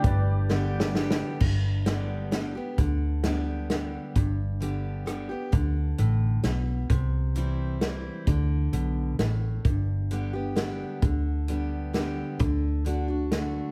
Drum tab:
CC |---------|x--------|---------|---------|
HH |x--------|---x--x--|x--x--x--|x--x--x--|
SD |---o-ooo-|---o--o--|---o--o--|------r--|
BD |o--------|o--------|o--------|o--------|

CC |---------|---------|---------|---------|
HH |x--x--x--|x--x--x--|x--x--x--|x--x--x--|
SD |------o--|------o--|------o--|------o--|
BD |o--------|o--------|o--------|o--------|

CC |---------|---------|
HH |x--x--x--|x--x--x--|
SD |------o--|------o--|
BD |o--------|o--------|